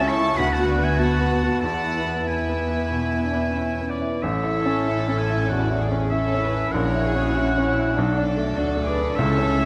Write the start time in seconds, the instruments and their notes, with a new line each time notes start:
Already playing: grand piano C#2 E4, double bass section C#2, viola section C#4 E4, violin section A4
0.00 grand piano C#4
0.07 cello section E4, violin section A5, oboe C#6
0.19 grand piano E4
0.36 double bass section D2, grand piano D2, viola section B3 F#4, cello section F#4, violin section B4 F#5, oboe B5
0.53 violin section F#5, oboe A5
0.59 grand piano F#4
0.65 oboe F#5
0.69 violin section D5
0.79 grand piano B3
0.83 violin section E5, oboe G#5
0.99 viola section B3 F#4, grand piano F#4, violin section B4 F#5, oboe A5
1.21 grand piano B3
1.43 grand piano F#4
1.61 double bass section E2, grand piano E2, viola section B3 E4, cello section E4, violin section B4 F#5, oboe A5
1.85 grand piano E4
2.06 grand piano B3
2.27 viola section B3, grand piano E4, violin section B4 E5, oboe G#5
2.49 grand piano B3
2.70 grand piano E4
2.91 grand piano B2
3.13 grand piano E4
3.23 viola section D4
3.34 grand piano B3
3.56 viola section C#4, grand piano E4
3.81 grand piano B3
3.90 violin section B4, oboe D5
4.01 grand piano E4
4.21 double bass section A1, grand piano A1, viola section C#4 E4, violin section A4 C#5, cello section A4, oboe E5
4.44 grand piano E4
4.65 grand piano C#4
4.87 grand piano E4
5.08 grand piano C#4
5.17 violin section E5, oboe G#5
5.30 grand piano E4
5.49 grand piano E2, cello section F#4, violin section D5, oboe F#5
5.70 grand piano E4
5.80 cello section G#4
5.91 grand piano C#4
6.10 viola section C#4 E4, grand piano E4, violin section A4 C#5, cello section A4, oboe E5
6.34 grand piano C#4
6.42 cello section B4
6.54 grand piano E4
6.71 double bass section A#1, grand piano A#1, viola section C#4 E4, violin section F#4 C#5, cello section A#4, oboe F#5
6.95 grand piano E4
7.04 cello section G#4
7.16 grand piano C#4
7.35 grand piano E4, cello section F#4
7.58 grand piano C#4
7.64 cello section E4
7.79 grand piano E4
7.95 double bass section B1, grand piano B1, cello section D4, viola section D4, violin section A4
8.17 grand piano D4
8.37 grand piano A3
8.55 double bass section D2, grand piano D4, cello section F#4
8.76 grand piano A3
8.85 cello section G#4, violin section B4, oboe D5
8.98 grand piano D4
9.15 double bass section C#2, grand piano C#2, viola section C#4 E4, violin section A4 C#5, cello section A4, oboe E5
9.38 grand piano C#4
9.58 grand piano A3